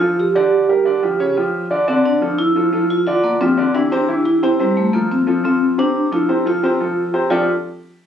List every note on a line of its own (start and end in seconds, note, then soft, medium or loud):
0.00 0.29 F3 medium
0.00 0.17 F4 loud
0.00 0.29 F4 medium
0.00 0.29 A4 medium
0.20 0.35 G4 medium
0.35 0.63 D3 medium
0.35 0.63 D4 medium
0.35 1.33 G4 medium
0.35 0.64 D5 medium
0.69 0.83 G3 medium
0.69 0.83 G4 medium
0.69 0.83 A#4 medium
0.85 0.99 D3 medium
0.85 1.00 D4 medium
0.85 1.00 D5 medium
1.03 1.17 F3 medium
1.03 1.17 F4 medium
1.03 1.17 G4 medium
1.19 1.33 C#3 medium
1.19 1.34 C#4 medium
1.19 1.34 C#5 medium
1.37 1.65 F3 medium
1.37 1.65 F4 medium
1.37 1.65 G4 medium
1.71 1.85 D3 medium
1.71 1.85 D4 medium
1.71 1.85 D5 medium
1.88 2.15 D3 medium
1.88 2.05 C4 medium
1.88 2.16 D4 medium
1.88 2.16 D5 medium
2.05 2.40 D4 loud
2.21 2.49 F3 medium
2.21 2.49 F4 medium
2.21 2.50 A4 medium
2.39 2.91 E4 loud
2.56 2.70 F3 medium
2.56 2.70 F4 medium
2.56 2.70 A4 medium
2.72 3.00 F3 medium
2.72 3.00 F4 medium
2.72 3.00 A4 medium
2.90 2.98 F4 medium
3.07 3.35 D3 medium
3.07 3.35 D4 medium
3.07 3.24 F4 medium
3.07 3.35 D5 medium
3.24 3.31 A#3 medium
3.41 3.55 F3 medium
3.41 3.75 C4 loud
3.41 3.55 F4 medium
3.41 3.55 G4 medium
3.57 3.71 D3 medium
3.57 3.71 D4 medium
3.57 3.72 D5 medium
3.74 3.88 E3 medium
3.74 4.22 D4 loud
3.74 3.88 E4 medium
3.74 3.88 G4 medium
3.91 4.05 C3 medium
3.91 4.05 C4 medium
3.91 4.06 C5 medium
4.08 4.36 E3 medium
4.08 4.36 E4 medium
4.08 4.36 G4 medium
4.25 4.33 E4 medium
4.43 4.56 C3 medium
4.43 4.56 C4 medium
4.43 4.59 E4 loud
4.43 4.57 C5 medium
4.59 4.87 C3 medium
4.59 4.67 G3 medium
4.59 4.87 C4 medium
4.59 4.87 C5 medium
4.77 4.94 A3 medium
4.93 5.21 F3 medium
4.93 5.11 A#3 medium
4.93 5.21 F4 medium
4.93 5.21 A4 medium
5.12 5.42 C4 medium
5.27 5.41 F3 medium
5.27 5.41 F4 medium
5.27 5.41 A4 medium
5.44 5.71 F3 medium
5.44 5.79 C4 medium
5.44 5.72 F4 medium
5.44 5.72 A4 medium
5.78 6.06 C3 medium
5.78 6.06 C4 medium
5.78 6.13 D4 loud
5.78 6.06 C5 medium
6.12 6.26 F3 medium
6.12 6.44 E4 medium
6.12 6.26 F4 medium
6.12 6.26 A4 medium
6.29 6.42 C3 medium
6.29 6.43 C4 medium
6.29 6.43 C5 medium
6.45 6.59 F3 medium
6.45 6.60 F4 medium
6.45 7.10 F4 medium
6.45 6.60 A4 medium
6.63 6.77 C3 medium
6.63 6.77 C4 medium
6.63 6.77 C5 medium
6.80 7.08 F3 medium
6.80 7.08 F4 medium
6.80 7.08 A4 medium
7.14 7.27 C3 medium
7.14 7.27 C4 medium
7.14 7.28 C5 medium
7.30 7.46 F3 medium
7.30 7.46 C4 medium
7.30 7.46 D4 medium
7.30 7.46 F4 medium
7.30 7.46 G4 medium
7.30 7.46 A4 medium